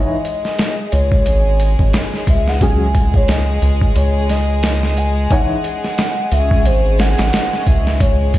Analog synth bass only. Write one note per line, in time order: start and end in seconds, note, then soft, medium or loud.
0.93 1.28 C#2 loud
1.27 1.76 G#1 loud
1.79 1.92 G#1 loud
2.27 3.59 C#2 medium
3.62 3.92 C#2 loud
3.96 5.28 C#2 medium
6.32 6.67 C#2 medium
6.66 7.15 G#1 loud
7.19 7.31 G#1 medium
7.67 8.39 C#2 medium